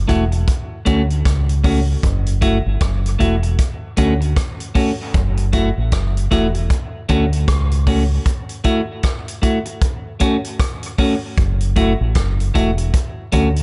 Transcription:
0.08 E1 A3 E4 F#4, kick, cross-stick, closed hi-hat
0.32 muted clean electric guitar stroke, closed hi-hat
0.48 kick, closed hi-hat
0.85 D2 A3 C#4 F#4, kick, closed hi-hat
1.10 closed hi-hat
1.25 C#2, kick, cross-stick, closed hi-hat
1.49 closed hi-hat
1.64 A3 C#4 F#4, kick, open hi-hat
2.03 F#1, kick, closed hi-hat
2.26 closed hi-hat
2.41 A3 E4 F#4, kick, closed hi-hat
2.66 G1
2.81 F#1, kick, cross-stick, closed hi-hat
3.06 closed hi-hat
3.19 E1 A3 E4 F#4, kick, closed hi-hat
3.43 muted clean electric guitar stroke, closed hi-hat
3.59 kick, closed hi-hat
3.97 D2 A3 C#4 F#4, kick, closed hi-hat
4.21 muted clean electric guitar stroke, closed hi-hat
4.36 kick, cross-stick, closed hi-hat
4.60 closed hi-hat
4.75 A3 C#4 F#4, kick, open hi-hat
5.14 F#1, kick, closed hi-hat
5.37 closed hi-hat
5.53 A3 E4 F#4, kick, closed hi-hat
5.78 A1
5.92 F#1, kick, cross-stick, closed hi-hat
6.17 closed hi-hat
6.31 E1 A3 E4 F#4, kick, cross-stick, closed hi-hat
6.55 muted clean electric guitar stroke, closed hi-hat
6.70 kick, closed hi-hat
7.09 D2 A3 C#4 F#4, kick, closed hi-hat
7.33 closed hi-hat
7.48 C#2, kick, cross-stick, closed hi-hat
7.71 closed hi-hat
7.87 A3 C#4 F#4, kick, open hi-hat
8.26 kick, closed hi-hat
8.49 closed hi-hat
8.64 A3 E4 F#4, kick, closed hi-hat
9.03 kick, cross-stick, closed hi-hat
9.28 closed hi-hat
9.42 A3 E4 F#4, kick, closed hi-hat
9.66 muted clean electric guitar stroke, closed hi-hat
9.81 kick, closed hi-hat
10.20 A3 C#4 F#4, kick, closed hi-hat
10.45 closed hi-hat
10.60 kick, cross-stick, closed hi-hat
10.83 closed hi-hat
10.98 A3 C#4 F#4, kick, open hi-hat
11.38 F#1, kick, closed hi-hat
11.61 closed hi-hat
11.76 A3 E4 F#4, kick, closed hi-hat
12.01 A1
12.15 F#1, kick, cross-stick, closed hi-hat
12.40 closed hi-hat
12.54 E1 A3 E4 F#4, kick, closed hi-hat
12.78 muted clean electric guitar stroke, closed hi-hat
12.94 kick, closed hi-hat
13.32 D2 A3 C#4 F#4, kick, closed hi-hat
13.56 closed hi-hat

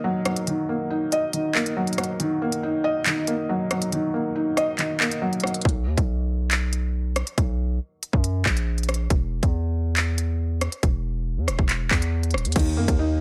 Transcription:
Already playing: D#3 A#3 D#4 D#5
0.04 F#3
0.25 F#3, cross-stick, closed hi-hat
0.36 closed hi-hat
0.47 D#3, closed hi-hat
0.69 A#3
0.90 D#4
1.12 D#5, closed hi-hat
1.33 D#3, closed hi-hat
1.55 A#3, clap
1.66 closed hi-hat
1.77 F#3
1.87 closed hi-hat
1.93 closed hi-hat
1.98 F#3, cross-stick, closed hi-hat, open hi-hat
2.04 closed hi-hat
2.20 D#3, closed hi-hat
2.42 A#3
2.52 closed hi-hat
2.63 D#4
2.84 D#5
3.06 D#3, clap, closed hi-hat
3.27 A#3, closed hi-hat
3.49 F#3
3.71 F#3, cross-stick, closed hi-hat
3.82 closed hi-hat
3.92 D#3, closed hi-hat
4.14 A#3
4.36 D#4
4.57 D#5, cross-stick, closed hi-hat
4.79 D#3, clap, closed hi-hat
5.00 A#3, clap
5.11 closed hi-hat
5.22 F#3
5.33 closed hi-hat
5.40 F#3, cross-stick, closed hi-hat
5.47 closed hi-hat
5.54 closed hi-hat
5.61 B1, kick, closed hi-hat
5.69 closed hi-hat
5.87 D#2
5.98 B1, kick, closed hi-hat
6.51 clap, closed hi-hat
6.73 closed hi-hat
7.16 cross-stick, closed hi-hat
7.27 closed hi-hat
7.38 B1, kick, closed hi-hat
8.03 closed hi-hat
8.13 F#2, kick
8.24 closed hi-hat
8.46 A#1, kick, clap
8.57 closed hi-hat
8.78 closed hi-hat
8.83 closed hi-hat
8.89 cross-stick, closed hi-hat, open hi-hat
8.94 closed hi-hat
9.10 E1, kick, closed hi-hat
9.43 E2, kick, closed hi-hat
9.97 clap, closed hi-hat
10.18 closed hi-hat
10.61 cross-stick, closed hi-hat
10.72 closed hi-hat
10.83 E1, kick, closed hi-hat
11.37 E2
11.48 E1, cross-stick, closed hi-hat
11.59 E1, kick
11.69 clap, closed hi-hat
11.91 E2, kick, clap
12.02 closed hi-hat
12.23 closed hi-hat
12.31 D#1, cross-stick, closed hi-hat
12.38 closed hi-hat
12.45 E2, closed hi-hat
12.52 D#2, kick, closed hi-hat, crash
12.56 D#3, closed hi-hat
12.59 closed hi-hat
12.77 F#2 A#3
12.88 D#2, kick, closed hi-hat
12.99 D#4

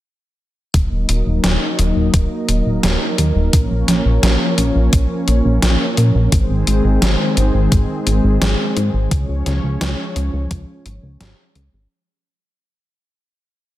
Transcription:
0.74 D#1 F#3 A#3 D#4 A#4 D#5, kick, closed hi-hat
0.91 D#1
1.09 D#1, closed hi-hat
1.26 D#1
1.44 D#1, snare, closed hi-hat
1.79 D#1, closed hi-hat
1.96 D#1
2.14 D#1, kick, closed hi-hat
2.48 D#1, closed hi-hat
2.66 D#1
2.83 D#1, snare, closed hi-hat
3.18 D#2, closed hi-hat
3.36 D#1
3.53 A#1 F3 A#3 C#4 C#5, kick, closed hi-hat
3.71 A#1
3.88 A#1, snare, closed hi-hat
4.05 A#1
4.23 A#1, snare, closed hi-hat
4.58 A#1, closed hi-hat
4.75 A#1
4.93 A#1, kick, closed hi-hat
5.28 A#1, closed hi-hat
5.45 A#1
5.62 A#1, snare, closed hi-hat
5.97 A#2, closed hi-hat
6.15 A#1
6.32 G#1 D#3 G#3 C4 G#4 C5, kick, closed hi-hat
6.50 G#1
6.67 G#1, closed hi-hat
6.84 G#1
7.02 G#1, snare, closed hi-hat
7.37 G#1, closed hi-hat
7.54 G#1
7.72 G#1, kick, closed hi-hat
8.07 G#1, closed hi-hat
8.24 G#1
8.42 G#1, snare, closed hi-hat
8.76 G#2, closed hi-hat
8.94 G#1
9.11 C#2 F3 C#4 C#5, kick, closed hi-hat
9.29 C#2
9.46 C#2, snare, closed hi-hat
9.64 C#2
9.81 C#2, snare, closed hi-hat
10.16 C#2, closed hi-hat
10.33 C#2
10.51 C#2, kick, closed hi-hat
10.86 G#1, closed hi-hat
11.03 C#2
11.21 G#1, snare, closed hi-hat
11.55 C#2, closed hi-hat
11.73 G#1

